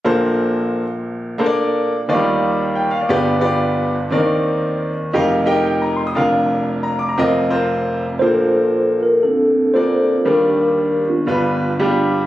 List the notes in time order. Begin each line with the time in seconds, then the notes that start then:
0.04 A#1 A#2 A#3 D4 A4 C5
1.38 A#3 D4 A4 C5
1.46 D5
2.08 D#2 D#3 F3 D#4 F4 D5
2.15 G3
2.75 G5
2.91 F5
3.01 D5
3.09 G1 G2 B3 F4 G4 D5
3.40 B3 F4 G4 D5
4.11 D#2 D#3 C4 D4 A#4 D5
4.17 D#4
5.13 F1 F2 D#4 G4 A#4 F5
5.46 D#4 G4 A#4 G5
5.66 G5
5.82 A#5
5.96 C6
6.07 D#6
6.15 F1 F2 D4 F4 A#4 F5
6.83 A#5
6.99 D6
7.09 A#5
7.18 F1 F2 C4 F4 A#4 D#5
7.49 C4 F4 A#4 C5
8.19 A#1 A#2 A#3 D4 F4 A4 C5
9.03 A#4
9.23 C4 D4 A4
9.74 A#3 D4 F4 A4 C5 D5
10.25 D#2 D#3 G3 D4 F4 G4 A#4 D5
11.09 B3 D4 F4
11.27 G1 G2 G3 D4 F4 B4
11.79 G3 D4 F4 G4